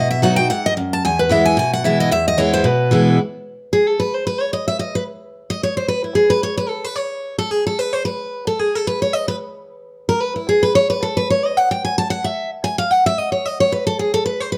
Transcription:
Already playing: B2 D#5
0.11 E5
0.22 F#3 B3 D#4 F#4 F#5
0.36 D#4 F#4 G5
0.50 G#2 F#5
0.66 D#5
0.77 F#2
0.93 A5
1.05 E2 G#5
1.19 B4
1.29 E3 G#3 B3 E4 E5
1.46 G#5
1.57 B2 G#5
1.73 F#5
1.84 E3 G#3 B3 E4 E5
2.00 D#5
2.11 E2 E5
2.28 D#5
2.38 E3 G#3 B3 E4 C#5
2.53 C5
2.64 B2 B4
2.91 E3 G#3 B3 E4
3.73 G#4
3.88 A4
4.00 B4
4.15 C5
4.27 B4
4.41 C#5
4.53 D#5
4.68 E5
4.79 D#5
4.95 B4
5.50 D#5
5.63 C#5
5.77 C5
5.88 B4
6.04 E4
6.15 G#4
6.30 B4
6.43 C#5
6.57 B4
6.69 A4
6.84 B4
6.96 C#5
7.38 A4
7.51 G#4
7.67 A4
7.79 B4
7.93 C5
8.05 B4
8.47 A4
8.59 G#4
8.75 A4
8.87 B4
9.02 C#5
9.13 D#5
9.28 B4
10.09 A#4
10.21 B4
10.36 E4
10.49 G#4
10.63 B4
10.75 C#5
10.90 B4
11.03 A4
11.17 B4
11.30 C#5
11.45 D#5
11.57 F#5
11.71 G5
11.85 G#5
11.98 A5
12.10 F#5
12.24 E5
12.64 G#5
12.78 F5
12.91 F#5
13.06 E5
13.18 D#5
13.32 C#5
13.45 D#5
13.60 C#5
13.72 B4
13.87 A4
13.99 G#4
14.14 A4
14.26 B4
14.40 C5
14.52 B4

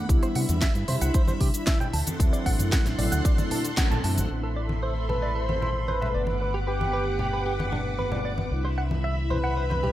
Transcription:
0.09 C2 G3 B3 D4 E4 E5 B5, kick, closed hi-hat, cabasa
0.23 C5, closed hi-hat, cabasa
0.35 C3 F#5, open hi-hat
0.48 E2 G3 D4 E4, closed hi-hat, high conga, cabasa
0.62 E5, kick, snare, closed hi-hat, cabasa
0.75 G2, closed hi-hat, cabasa
0.87 C3 G3 D4 E4 C5, open hi-hat, high conga, low conga
1.01 C2 F#5, closed hi-hat, cabasa
1.14 C5, kick, closed hi-hat, cabasa
1.27 C5, high conga, cabasa
1.41 C3 G4, kick, open hi-hat
1.54 G3 D4 E4, closed hi-hat, cabasa
1.67 E5, kick, snare, closed hi-hat, high conga, cabasa
1.80 G5, low conga, cabasa
1.93 D2 D4 A4 F#5 A5 C6, open hi-hat
2.07 closed hi-hat, high conga, cabasa
2.19 D2 F#3 A3 C4 E4, kick, closed hi-hat, cabasa
2.33 D5, closed hi-hat, cabasa
2.46 A1 F#5, kick, open hi-hat
2.59 F#2 F#3 A3 C4 E4, closed hi-hat, high conga, cabasa
2.72 F#5, kick, snare, closed hi-hat, cabasa
2.85 A1, snare, closed hi-hat, cabasa
2.98 A1 F#3 A3 C4 E4 D5, open hi-hat, low conga
3.12 D2 F#5, closed hi-hat, cabasa
3.25 D5, kick, closed hi-hat, cabasa
3.38 D5, closed hi-hat, high conga, cabasa
3.51 A4, open hi-hat, low conga
3.65 closed hi-hat, cabasa
3.77 F#3 A3 C4 A4 F#5, kick, snare, closed hi-hat, high conga, cabasa
3.91 A1 A5, low conga, cabasa
4.03 F#2 F#3 A3 C4 E4 A5, open hi-hat
4.17 A1, closed hi-hat, high conga, cabasa
4.29 A1 A3 C4 A4 E5 B5 C6
4.43 A4
4.56 D5
4.69 high conga
4.83 C5
5.09 A4 B4, high conga, low conga
5.22 D5
5.35 A4 C5
5.49 A4, high conga
5.62 E4, low conga
5.88 B4 C5, high conga
6.02 E5, low conga
6.13 G1 A3 B3 D4 B4 D5 F#5 D6
6.27 high conga
6.41 B4
6.54 G4
6.67 G4 B4
6.81 high conga
6.93 B4
7.19 G4, low conga
7.33 B4
7.46 G4
7.59 G4, high conga
7.72 D4, low conga
7.99 B4, high conga
8.12 D5, low conga
8.25 D5
8.38 high conga
8.50 C2 G3 D4 E4 E5 B5
8.65 C5
8.78 F#5
8.91 high conga
9.04 E5
9.30 B4 C5, high conga, low conga
9.44 F#5
9.57 C5
9.70 C5, high conga
9.83 G4, low conga

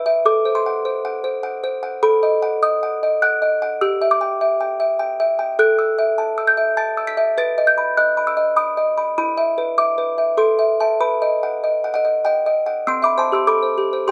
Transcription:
Already playing: E4 B4 E6
0.06 E5
0.26 A4 D6
0.45 C5
0.55 C6
0.66 F#5
0.85 C5
1.05 F#5
1.24 C5
1.43 F#5
1.64 C5
1.83 F#5
2.03 A4 B5
2.23 D#5
2.42 F#5
2.63 D#5 D#6
2.83 F#5
3.03 D#5
3.22 F#5 F#6
3.42 D#5
3.62 F#5
3.81 G4 E6
4.01 E5
4.11 D6
4.21 G5
4.41 E5
4.61 G5
4.80 E5
4.99 G5
5.20 E5
5.39 G5
5.59 A4 F#6
5.79 E6
5.98 E5
6.18 A5
6.38 E6
6.47 G6
6.57 E5
6.77 A5 A6
6.97 E6
7.07 B6
7.17 E5
7.38 B4 A6
7.58 D#5
7.67 G6
7.78 B5
7.97 D#5 F#6
8.17 B5
8.27 E6
8.37 D#5
8.56 B5 D#6
8.77 D#5
8.98 B5
9.18 E4 B5
9.37 E5
9.58 B4
9.78 E5 D6
9.98 B4
10.18 E5
10.37 A4 C6
10.59 E5
10.80 E5 A5
11.00 B4 B5
11.22 D#5
11.43 F#5
11.64 D#5
11.84 F#5
11.94 D#5 F#5
12.05 D#5
12.25 D#5 F#5 G5
12.46 D#5
12.66 F#5
12.87 C4 C6 E6
13.02 E5 B5 D6
13.18 C5 A5 C6
13.32 G4 C6 E6
13.47 A4 B5 D6
13.62 C5
13.78 G4
13.93 C5
14.08 G4 C6

